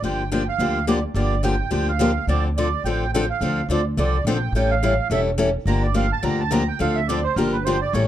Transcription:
0.02 G1 D3 F3 A#3 D4 G4 G5
0.32 D3 F3 A#3 D4 G4 G5
0.49 F5
0.58 D2 D3 F3 A#3 D4 G4
0.87 D3 F3 A#3 D4 G4 D5
1.14 G1 D3 F3 A#3 D4 G4 D5
1.43 D3 F3 A#3 D4 G4 G5
1.71 D2 D3 F3 A#3 D4 G4 G5
1.89 F5
1.99 D3 F3 A#3 D4 G4
2.27 D2 D3 F3 C4 D4 A4 D5
2.57 D3 F3 C4 D4 A4 D5
2.84 A1 D3 F3 C4 D4 A4 G5
3.14 D3 F3 C4 D4 A4 G5
3.30 F5
3.41 D2 D3 F3 C4 D4 A4
3.69 D2 D3 F3 C4 D4 A4 D5
3.97 C2 D3 F3 C4 D4 A4 D5
4.25 A#1 D3 F3 C4 D4 A4 G5
4.52 A1 E3 G3 C#4 E4 G5
4.56 A4
4.71 F5
4.83 E3 G3 C#4 E4 A4
5.10 E1 E3 G3 C#4 E4 A4 E5
5.38 E3 G3 C#4 E4 A4
5.65 G1 D3 F3 A#3 D4 G4 A#5
5.83 D5
5.94 D3 F3 A#3 D4 G4 F5
6.13 A5
6.23 D2 D3 F3 A#3 D4 G4 A#5
6.40 A5
6.51 D3 F3 A#3 D4 G4 A#5
6.68 G5
6.79 D2 D3 F3 C4 D4 A4 F5
6.96 E5
7.08 D3 F3 C4 D4 A4 D5
7.24 C5
7.36 G1 D3 F3 A#3 D4 G4 A#4
7.52 B4
7.65 D3 F3 A#3 D4 G4 C5
7.81 D5
7.93 A1 E3 G3 C#4 E4 A4 C#5

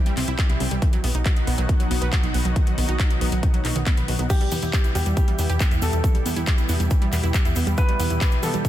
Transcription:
Already playing: C3 E3 G3 E4 G4
0.06 G3, closed hi-hat
0.17 C2 C4, clap, open hi-hat
0.28 C2 E4, closed hi-hat
0.39 G4, kick, clap, closed hi-hat
0.50 C2 E4, closed hi-hat
0.60 C2 C4, open hi-hat
0.71 C2 G3, closed hi-hat
0.82 B2 D#3 F#3 D#4 F#4, kick, closed hi-hat
0.93 F#3, closed hi-hat
1.04 B1 B3, open hi-hat
1.15 B1 D#4, closed hi-hat
1.26 F#4, kick, clap, closed hi-hat
1.36 D#4, closed hi-hat
1.47 B1 B3, open hi-hat
1.58 B1 F#3, closed hi-hat
1.69 D#3, kick, closed hi-hat
1.80 F#3, closed hi-hat
1.91 B1 B3, open hi-hat
2.02 B1 B4, closed hi-hat
2.12 F#4, kick, clap, closed hi-hat
2.23 B1 D#4, closed hi-hat
2.34 B1 B3, open hi-hat
2.45 B1 F#3, closed hi-hat
2.56 D#3, kick, closed hi-hat
2.67 F#3, closed hi-hat
2.78 B1 B3, open hi-hat
2.88 B1 D#4, closed hi-hat
2.99 F#4, kick, clap, closed hi-hat
3.10 D#4, closed hi-hat
3.21 B1 B3, open hi-hat
3.32 B1 F#3, closed hi-hat
3.43 D#3, kick, closed hi-hat
3.54 F#3, closed hi-hat
3.65 B1 D#4, clap, open hi-hat
3.76 B1 D#3, closed hi-hat
3.86 B3, kick, clap, closed hi-hat
3.97 B1 B4, closed hi-hat
4.08 B1 B3, open hi-hat
4.19 B1 B3, closed hi-hat
4.30 B2 E3 G3 E4 G4, kick, closed hi-hat, crash, shaker
4.41 G3, closed hi-hat
4.52 E2 B3, open hi-hat, shaker
4.62 E2 E4, closed hi-hat, shaker
4.73 G4, kick, clap, closed hi-hat, shaker
4.84 E4, closed hi-hat, shaker
4.95 E2 B3 G4, open hi-hat, shaker
5.06 E2 G3, closed hi-hat, shaker
5.17 E3, kick, closed hi-hat, shaker
5.28 G3, closed hi-hat
5.39 E2 B3, open hi-hat, shaker
5.50 E2 G4, closed hi-hat, shaker
5.60 G4, kick, clap, closed hi-hat, shaker
5.71 E2 E4, closed hi-hat, shaker
5.82 E2 B3 A4, open hi-hat, shaker
5.93 E2 G3, closed hi-hat, shaker
6.04 E3, kick, closed hi-hat, shaker
6.15 G3, closed hi-hat
6.26 E2 B3, open hi-hat, shaker
6.36 E2 E4, closed hi-hat, shaker
6.47 G4, kick, clap, closed hi-hat, shaker
6.58 E4, closed hi-hat, shaker
6.69 E2 B3, open hi-hat, shaker
6.80 E2 G3, closed hi-hat, shaker
6.90 E3, kick, closed hi-hat, shaker
7.02 G3, closed hi-hat
7.13 E2 B3, clap, open hi-hat, shaker
7.23 E2 E4, closed hi-hat, shaker
7.34 G4, kick, clap, closed hi-hat, shaker
7.45 E2 E4, closed hi-hat, shaker
7.56 E2 B3, open hi-hat, shaker
7.67 E2 G3, closed hi-hat, shaker
7.77 E3 B4, kick, closed hi-hat, shaker
7.89 G3, closed hi-hat
8.00 E2 B3, open hi-hat, shaker
8.10 E2 E4, closed hi-hat, shaker
8.21 G4, kick, clap, closed hi-hat, shaker
8.31 E4, closed hi-hat, shaker
8.43 E2 B3 A4, open hi-hat, shaker
8.54 E2 G3, closed hi-hat, shaker
8.65 E3, kick, closed hi-hat, shaker

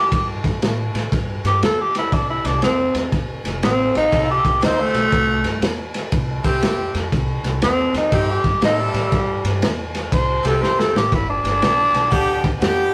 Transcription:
Already playing: E2 G4
0.12 G2, kick, snare, ride
0.44 G2, kick, snare, ride
0.62 A2, snare, ride
0.94 A2, snare, ride
1.12 G2, kick, snare, ride
1.44 G2 G4, snare, ride
1.62 E2 A4, snare, ride
1.81 G4
1.95 E4, snare, ride
2.12 C2 D4, kick, snare, ride
2.30 E4
2.44 C2 D4, snare, ride
2.62 C4, snare, ride
2.94 E2, snare, ride
3.12 F1, kick, snare, ride
3.44 F1, snare, ride
3.62 A1 C4, snare, ride
3.95 A1 D#4, snare, ride
4.11 C2 C4 F4 A4, kick, snare, ride
4.31 G4
4.45 C2, kick, snare, ride
4.61 D2 C4 D#4 F4 C5, snare, ride
4.81 A3
4.94 B1, snare, ride
5.12 C2, kick, snare, ride
5.43 G2, snare, ride
5.61 E2, snare, ride
5.94 snare, ride
6.12 C2, kick, snare, ride
6.43 C2 C4 E4 G4, kick, snare, ride
6.62 F2, snare, ride
6.94 F2, snare, ride
7.12 C2, kick, snare, ride
7.43 C2, snare, ride
7.62 E2 C4, snare, ride
7.93 E2, snare, ride
7.98 D#4
8.11 G2 C4 E4 G4, kick, snare, ride
8.31 G4
8.44 G2, kick, snare, ride
8.61 A2 C4 E4 A4, snare, ride
8.65 D#4
8.80 G3
8.93 A2, snare, ride
9.12 G2, kick, snare, ride
9.44 G2, snare, ride
9.62 E2, snare, ride
9.95 snare, ride
10.12 C2 C5, kick, snare, ride
10.43 C2 C4 E4 G4, snare, ride
10.47 A4
10.61 F2 C5, snare
10.80 A4, snare
10.93 A1 G4, snare
11.12 G1 E4, kick, snare, ride
11.30 D4
11.44 G1, snare, ride
11.61 B1, snare, ride
11.94 B1, snare, ride
12.10 D2 B3 D4 G4, kick, snare, ride
12.44 D2, kick, snare, ride
12.60 F2 B3 D4 G4, snare, ride

